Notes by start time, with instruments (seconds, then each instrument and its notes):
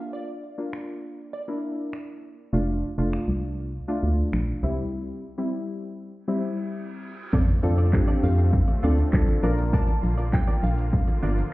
Already playing: synth stab A#3 D4 F4, synth pluck F5
0.13 synth pluck D5
0.58 synth stab A#3 D4 F4
0.73 finger snap
1.33 synth pluck D5
1.48 synth stab A#3 D4 E4
1.93 finger snap
2.53 fm bass F1, synth stab A3 D4 F4
2.98 fm bass F1, synth stab A3 D4 F4
3.13 finger snap
3.28 fm bass C2
3.88 synth stab A3 D4 F4
4.03 fm bass D2
4.33 fm bass A#1, finger snap
4.63 fm bass C2, synth stab G3 C4 E4
5.38 synth stab G3 C4 E4
6.13 reverse cymbal
6.28 synth stab G3 C4 E4
7.33 fm bass F2, supersaw synth D3 A3 C4 F4, clean electric guitar C4 F4 A4 D5, kick, crash, impact, shaker
7.48 muted clean electric guitar stroke, closed hi-hat, shaker
7.63 fm bass F2, synth stab C4 D4 F4 A4, muted clean electric guitar stroke, open hi-hat, shaker
7.78 clean electric guitar C4 F4 A4 D5, closed hi-hat, shaker
7.93 synth stab C4 D4 F4 G4, muted clean electric guitar stroke, kick, clap, shaker
8.08 clean electric guitar C4 F4 A4 D5, closed hi-hat, shaker
8.23 fm bass F2, synth pluck F5, muted clean electric guitar stroke, open hi-hat, shaker
8.38 muted clean electric guitar stroke, closed hi-hat, shaker
8.53 kick, shaker
8.68 muted clean electric guitar stroke, closed hi-hat, shaker
8.83 fm bass D2, synth stab C4 D4 F4 A4, clean electric guitar C4 F4 A4 D5, open hi-hat, shaker
8.98 muted clean electric guitar stroke, closed hi-hat, shaker
9.13 fm bass C2, synth stab C4 D4 F4 A4, kick, clap, shaker
9.28 muted clean electric guitar stroke, closed hi-hat, shaker
9.43 fm bass A#1, supersaw synth F3 A#3, synth stab A#3 D4 F4 A#4, clean electric guitar D4 F4 A#4 D5, open hi-hat, shaker
9.58 muted clean electric guitar stroke, closed hi-hat, shaker
9.73 clean electric guitar D4 F4 A#4 D5, synth pluck A5, kick, shaker
9.88 muted clean electric guitar stroke, closed hi-hat, shaker
10.03 fm bass A#1, muted clean electric guitar stroke, open hi-hat, shaker
10.18 clean electric guitar D4 F4 A#4 D5, closed hi-hat, shaker
10.33 synth pluck G5, muted clean electric guitar stroke, kick, clap, shaker
10.48 clean electric guitar D4 F4 A#4 D5, closed hi-hat, shaker
10.63 fm bass A#1, synth pluck F5, muted clean electric guitar stroke, open hi-hat, shaker
10.78 muted clean electric guitar stroke, closed hi-hat, shaker
10.93 kick, shaker
11.08 muted clean electric guitar stroke, closed hi-hat, shaker
11.23 fm bass G1, clean electric guitar D4 F4 A#4 D5, open hi-hat, shaker
11.38 muted clean electric guitar stroke, closed hi-hat, shaker